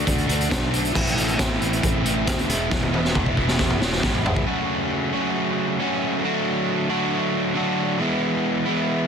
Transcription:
0.06 0.28 D2 medium
0.06 0.26 D3 medium
0.06 0.26 A3 loud
0.06 0.27 D4 loud
0.06 0.27 F#4 loud
0.06 kick loud
0.06 closed hi-hat medium
0.18 closed hi-hat soft
0.27 0.50 D2 medium
0.27 0.48 D3 medium
0.27 0.49 A3 medium
0.27 0.49 D4 medium
0.27 0.50 F#4 medium
0.27 closed hi-hat medium
0.41 closed hi-hat soft
0.50 0.93 B1 medium
0.50 0.70 D3 loud
0.50 0.70 A3 loud
0.50 0.71 D4 loud
0.50 0.71 F#4 loud
0.50 kick loud
0.50 snare loud
0.50 closed hi-hat medium
0.72 0.93 D3 medium
0.72 0.93 A3 medium
0.72 0.93 D4 medium
0.72 0.94 F#4 loud
0.72 closed hi-hat medium
0.85 closed hi-hat soft
0.93 1.16 A1 medium
0.93 1.15 A2 loud
0.93 1.16 E3 loud
0.93 1.16 A3 loud
0.93 1.16 C4 loud
0.93 1.17 E4 loud
0.93 kick loud
0.93 crash loud
1.07 closed hi-hat soft
1.16 1.38 A1 medium
1.16 1.36 A2 medium
1.16 1.38 E3 medium
1.16 1.37 A3 medium
1.16 1.37 C4 medium
1.16 1.39 E4 medium
1.16 closed hi-hat medium
1.28 closed hi-hat soft
1.38 1.60 A1 loud
1.38 1.59 A2 medium
1.38 1.60 E3 loud
1.38 1.59 A3 loud
1.38 1.60 C4 loud
1.38 1.61 E4 loud
1.38 kick loud
1.38 snare loud
1.38 closed hi-hat loud
1.60 1.82 A1 medium
1.60 1.81 A2 medium
1.60 1.82 E3 medium
1.60 1.82 A3 loud
1.60 1.82 C4 medium
1.60 1.83 E4 loud
1.60 closed hi-hat medium
1.73 closed hi-hat soft
1.82 2.04 A1 medium
1.82 2.03 A2 medium
1.82 2.04 E3 medium
1.82 2.04 A3 medium
1.82 2.05 C4 loud
1.82 2.05 E4 loud
1.82 kick loud
1.82 closed hi-hat loud
2.05 2.26 A1 medium
2.05 2.26 A2 medium
2.05 2.26 E3 medium
2.05 2.27 A3 medium
2.05 2.27 C4 medium
2.05 2.27 E4 medium
2.05 closed hi-hat medium
2.27 2.51 D2 loud
2.27 2.48 A2 medium
2.27 2.48 E3 loud
2.27 2.48 A3 loud
2.27 2.48 C4 loud
2.27 2.48 E4 loud
2.27 kick loud
2.27 snare loud
2.27 closed hi-hat loud
2.39 closed hi-hat soft
2.49 2.70 E1 medium
2.49 2.69 E3 medium
2.49 2.70 G#3 loud
2.49 2.70 B3 loud
2.49 2.70 E4 loud
2.49 snare soft
2.49 closed hi-hat medium
2.70 3.13 E1 medium
2.70 2.91 E3 medium
2.70 2.92 G#3 loud
2.70 2.93 B3 loud
2.70 2.93 E4 loud
2.70 kick loud
2.70 snare medium
2.83 high tom medium
2.93 3.13 E3 medium
2.93 3.14 G#3 medium
2.93 3.14 B3 loud
2.93 3.14 E4 loud
2.93 high tom medium
3.05 snare medium
3.14 3.36 E1 loud
3.14 3.35 E3 loud
3.14 3.36 G#3 loud
3.14 3.37 B3 loud
3.14 3.37 E4 loud
3.14 kick loud
3.14 mid tom medium
3.26 kick medium
3.37 3.58 E1 medium
3.37 3.57 E3 medium
3.37 3.58 G#3 medium
3.37 3.58 B3 medium
3.37 3.58 E4 loud
3.37 kick medium
3.48 snare medium
3.59 3.80 E1 medium
3.59 3.79 E3 medium
3.59 3.79 G#3 medium
3.59 3.80 B3 medium
3.59 3.80 E4 loud
3.59 kick loud
3.59 snare medium
3.70 mid tom medium
3.80 4.02 E1 medium
3.80 4.01 E3 medium
3.80 4.02 G#3 medium
3.80 4.02 B3 medium
3.80 4.02 E4 loud
3.80 snare medium
3.93 snare medium
4.02 4.45 G#1 medium
4.02 4.23 E3 medium
4.02 4.23 G#3 loud
4.02 4.24 B3 loud
4.02 4.24 E4 loud
4.02 kick loud
4.02 snare loud
4.15 floor tom medium
4.24 4.45 E3 medium
4.24 4.45 G#3 medium
4.24 4.46 B3 medium
4.24 4.46 E4 loud
4.24 floor tom loud
4.36 kick medium
4.46 5.11 F#2 medium
4.46 5.11 C#3 medium
4.46 5.14 F#3 medium
4.46 5.13 A3 medium
4.46 5.12 C#4 medium
4.46 5.12 F#4 medium
5.13 5.78 F#2 medium
5.13 5.79 C#3 medium
5.13 5.79 F#3 medium
5.13 5.78 A3 medium
5.13 5.78 C#4 medium
5.13 5.78 F#4 medium
5.79 6.22 F#2 medium
5.79 6.22 C#3 medium
5.79 6.23 F#3 medium
5.79 6.23 A3 medium
5.79 6.23 C#4 medium
5.79 6.23 F#4 medium
6.23 6.88 D3 medium
6.23 6.89 F#3 loud
6.23 6.89 A3 medium
6.23 6.89 D4 medium
6.23 6.88 F#4 medium
6.89 7.53 D3 medium
6.89 7.54 F#3 medium
6.89 7.55 A3 medium
6.89 7.55 D4 medium
6.89 7.54 F#4 medium
7.55 7.98 D3 medium
7.55 7.98 F#3 medium
7.55 7.99 A3 medium
7.55 7.99 D4 medium
7.55 7.99 F#4 medium
7.99 8.64 E3 medium
7.99 8.65 G#3 loud
7.99 8.65 B3 loud
7.99 8.64 E4 medium
8.65 9.07 E3 medium
8.65 9.07 G#3 medium
8.65 9.07 B3 medium
8.65 9.07 E4 medium

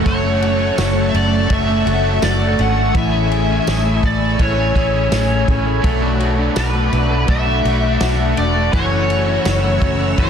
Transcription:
0.00 0.13 E3 medium
0.00 10.30 A3 medium
0.00 0.23 C#4 medium
0.00 0.41 F#4 medium
0.00 2.91 F#5 medium
0.00 2.91 C#6 medium
0.04 0.69 F#1 medium
0.04 1.50 F#2 medium
0.04 1.47 F#3 medium
0.04 0.95 A3 loud
0.04 1.49 A3 medium
0.04 1.11 C#5 medium
0.04 2.92 A5 medium
0.04 kick loud
0.04 ride medium
0.08 1.50 D4 medium
0.08 1.51 F#4 loud
0.23 0.59 C#4 medium
0.42 0.76 F#4 medium
0.42 ride soft
0.60 1.68 C#4 medium
0.78 1.10 F#1 loud
0.78 1.85 F#4 medium
0.78 snare loud
0.78 ride medium
0.78 tambourine medium
0.96 1.32 A3 medium
1.09 1.15 E5 medium
1.14 1.46 F#1 loud
1.14 1.52 D5 medium
1.14 ride soft
1.32 1.50 A3 medium
1.49 1.82 F#1 loud
1.49 1.86 F#3 medium
1.49 1.86 A3 medium
1.49 2.40 A3 medium
1.49 1.85 D4 medium
1.49 1.84 F#4 medium
1.49 kick medium
1.49 ride medium
1.53 2.20 E5 loud
1.68 2.58 C#4 medium
1.85 2.18 F#1 loud
1.85 2.93 F#3 soft
1.85 2.93 A3 soft
1.85 2.95 D4 medium
1.85 2.94 F#4 medium
1.85 2.21 F#4 medium
1.85 ride soft
2.22 2.54 F#1 loud
2.22 3.02 F#4 medium
2.22 2.60 D5 loud
2.22 snare loud
2.22 ride medium
2.22 tambourine medium
2.40 2.76 A3 medium
2.59 2.91 G#1 medium
2.59 3.12 C#4 medium
2.59 2.97 F#5 loud
2.59 ride soft
2.77 3.34 A3 medium
2.93 3.58 A1 loud
2.93 4.39 E3 medium
2.93 4.38 A3 medium
2.93 4.40 E4 medium
2.93 5.81 G#5 medium
2.93 5.81 C#6 medium
2.93 5.81 E6 loud
2.93 kick loud
2.93 ride medium
2.97 4.41 G#4 medium
2.97 4.05 E5 loud
3.13 3.48 C#4 medium
3.31 3.66 G#4 medium
3.31 ride soft
3.49 4.03 C#4 medium
3.67 3.99 A1 loud
3.67 4.75 G#4 medium
3.67 snare loud
3.67 ride medium
3.67 tambourine medium
3.85 4.21 A3 medium
4.03 4.35 A1 medium
4.03 4.42 D5 medium
4.03 kick loud
4.03 ride soft
4.21 5.29 A3 medium
4.39 4.71 A1 loud
4.39 5.91 E3 medium
4.39 4.75 A3 medium
4.39 4.76 C#4 medium
4.39 4.76 E4 medium
4.39 4.74 G#4 medium
4.39 5.45 C#5 medium
4.39 kick medium
4.39 ride medium
4.57 4.93 C#4 soft
4.75 5.07 A1 loud
4.75 5.85 C#4 soft
4.75 5.85 E4 soft
4.75 5.84 G#4 soft
4.75 5.11 G#4 medium
4.75 kick medium
4.75 ride soft
4.94 5.46 C#4 medium
5.12 5.43 A1 medium
5.12 5.91 G#4 medium
5.12 snare loud
5.12 ride medium
5.12 tambourine medium
5.30 5.66 A3 medium
5.48 5.80 A1 medium
5.48 5.91 C#4 medium
5.48 kick medium
5.48 ride soft
5.66 5.84 A3 medium
5.82 6.48 B1 loud
5.82 7.28 B2 medium
5.82 7.27 F#3 medium
5.82 6.74 A3 loud
5.82 7.28 A3 medium
5.82 7.28 D4 loud
5.82 10.30 F#5 medium
5.82 8.70 B5 medium
5.82 8.70 D6 medium
5.82 kick loud
5.82 ride medium
5.87 7.30 F#4 loud
6.02 6.37 D4 medium
6.20 6.55 F#4 medium
6.20 ride soft
6.38 6.91 D4 medium
6.56 6.88 B1 loud
6.56 7.64 F#4 medium
6.56 7.32 B4 medium
6.56 snare loud
6.56 ride medium
6.56 tambourine medium
6.74 7.10 A3 medium
6.92 7.24 B1 medium
6.92 7.45 D4 medium
6.92 ride soft
7.10 7.28 A3 medium
7.27 7.60 B1 loud
7.27 7.64 F#3 medium
7.27 8.19 A3 medium
7.27 7.65 A3 medium
7.27 7.64 D4 medium
7.27 7.62 F#4 medium
7.27 8.38 E5 loud
7.27 kick medium
7.27 ride medium
7.46 7.81 D4 medium
7.64 7.96 B1 loud
7.64 8.74 A3 soft
7.64 8.74 D4 medium
7.64 8.76 F#4 medium
7.64 8.00 F#4 medium
7.64 ride soft
7.82 8.36 D4 medium
8.01 8.33 B1 loud
8.01 9.09 F#4 medium
8.01 snare loud
8.01 ride medium
8.01 tambourine medium
8.19 8.55 A3 medium
8.37 8.69 E1 medium
8.37 8.80 D4 medium
8.37 8.73 D5 loud
8.37 ride soft
8.55 9.63 A3 medium
8.72 10.17 F#2 medium
8.72 10.18 C#3 medium
8.72 10.17 E3 medium
8.72 10.15 E3 medium
8.72 10.18 A3 medium
8.72 10.19 C#4 medium
8.72 10.19 C#5 medium
8.72 10.30 C#6 medium
8.72 10.30 E6 loud
8.72 kick loud
8.72 ride medium
8.77 10.20 F#4 medium
8.91 9.27 C#4 medium
9.10 9.45 F#4 medium
9.10 ride soft
9.28 9.81 C#4 medium
9.45 9.77 F#1 loud
9.45 10.30 F#4 medium
9.45 snare loud
9.45 ride medium
9.45 tambourine medium
9.64 10.00 A3 medium
9.82 10.13 F#1 medium
9.82 10.30 C#4 medium
9.82 kick loud
9.82 ride soft
10.00 10.30 A3 medium
10.16 10.30 F#1 loud
10.16 10.30 E3 medium
10.16 10.30 A3 medium
10.16 10.30 C#4 medium
10.16 10.30 F#4 medium
10.16 10.30 C#5 medium
10.16 kick medium
10.16 ride medium

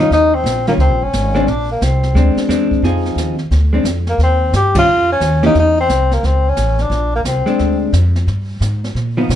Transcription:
0.00 0.10 C#4 medium
0.00 0.10 D#4 medium
0.00 0.10 F4 medium
0.10 0.43 D#2 medium
0.10 0.36 D#4 medium
0.10 brush sweep soft
0.10 snare soft
0.35 0.67 C4 medium
0.44 0.77 A#1 medium
0.44 snare medium
0.44 hi-hat pedal medium
0.67 0.79 D#3 medium
0.67 0.78 G3 medium
0.67 0.73 A#3 medium
0.67 0.79 C#4 medium
0.67 0.79 F4 medium
0.67 snare soft
0.77 0.90 C#2 medium
0.77 1.04 C4 medium
0.77 brush sweep soft
0.77 snare soft
0.90 1.01 A#1 medium
1.02 1.12 G1 medium
1.02 1.49 C#4 medium
1.13 1.46 G#1 medium
1.13 snare medium
1.13 hi-hat pedal medium
1.35 1.46 G#3 medium
1.35 1.46 C4 medium
1.35 1.46 D4 medium
1.35 snare soft
1.47 1.80 A#1 medium
1.47 1.69 D4 medium
1.47 brush sweep soft
1.47 snare soft
1.72 1.85 A#3 medium
1.81 2.14 C2 medium
1.81 2.38 C4 medium
1.81 snare medium
1.81 hi-hat pedal medium
2.03 snare soft
2.14 2.35 D2 medium
2.14 2.48 G#3 medium
2.14 2.48 C4 medium
2.14 2.48 D4 medium
2.14 brush sweep soft
2.14 snare soft
2.35 muted upright bass stroke soft
2.35 snare soft
2.48 2.82 E2 medium
2.48 2.83 G#3 medium
2.48 2.83 C4 medium
2.48 2.83 D4 medium
2.48 snare medium
2.48 hi-hat pedal medium
2.71 kick medium
2.82 3.15 F2 medium
2.82 3.34 F3 medium
2.82 3.35 C4 medium
2.82 3.35 D#4 medium
2.82 3.35 G#4 medium
2.82 brush sweep soft
2.82 snare soft
3.06 snare soft
3.15 3.49 D#2 medium
3.15 snare medium
3.15 hi-hat pedal medium
3.39 snare soft
3.51 3.84 D2 medium
3.51 brush sweep soft
3.51 snare soft
3.73 3.84 G#3 medium
3.73 3.85 C4 medium
3.73 3.85 D4 medium
3.84 4.18 F2 medium
3.84 snare medium
3.84 hi-hat pedal medium
4.07 4.20 A#3 medium
4.07 snare soft
4.18 4.52 D#2 medium
4.18 brush sweep soft
4.18 snare soft
4.23 4.53 C4 medium
4.53 4.86 G2 medium
4.53 4.75 G4 medium
4.53 snare medium
4.53 hi-hat pedal medium
4.75 4.86 D#3 medium
4.75 4.86 G3 medium
4.75 4.87 C#4 medium
4.75 4.87 F4 medium
4.75 5.08 F4 loud
4.75 kick medium
4.75 ride medium
4.87 5.20 F2 medium
4.87 brush sweep soft
5.12 5.42 C#4 medium
5.20 5.54 D#2 medium
5.20 snare medium
5.20 hi-hat pedal medium
5.43 5.54 E3 medium
5.43 5.54 A#3 medium
5.43 5.54 C#4 medium
5.43 5.56 D#4 medium
5.43 5.55 G4 medium
5.43 snare soft
5.55 5.88 E2 medium
5.55 brush sweep soft
5.55 snare soft
5.59 5.77 D#4 medium
5.80 6.16 C4 medium
5.89 6.22 C2 medium
5.89 snare medium
5.89 hi-hat pedal medium
6.11 6.27 A#3 medium
6.11 snare soft
6.23 6.56 C#2 medium
6.23 6.50 C4 medium
6.23 brush sweep soft
6.23 snare soft
6.49 6.83 C#4 medium
6.57 6.89 A1 medium
6.57 snare medium
6.57 hi-hat pedal medium
6.79 7.14 D4 medium
6.79 snare soft
6.90 7.24 A#1 medium
6.90 brush sweep soft
6.90 snare soft
7.15 7.21 A#3 medium
7.25 7.45 C2 medium
7.25 7.78 C4 medium
7.25 snare medium
7.25 hi-hat pedal medium
7.46 7.91 G#3 medium
7.46 7.91 C4 medium
7.46 7.92 D4 medium
7.46 snare soft
7.59 7.92 D2 medium
7.59 brush sweep soft
7.59 snare soft
7.93 8.26 F2 medium
7.93 snare medium
7.93 hi-hat pedal medium
8.16 snare soft
8.27 8.60 G2 medium
8.27 brush sweep soft
8.27 snare soft
8.60 8.94 G#2 medium
8.60 snare medium
8.60 hi-hat pedal medium
8.84 snare soft
8.95 9.28 A#2 medium
8.95 brush sweep medium
8.95 snare soft
9.17 9.36 F3 medium
9.17 9.36 B3 medium
9.17 9.36 D#4 medium
9.29 9.36 B2 medium
9.29 snare medium
9.29 hi-hat pedal medium

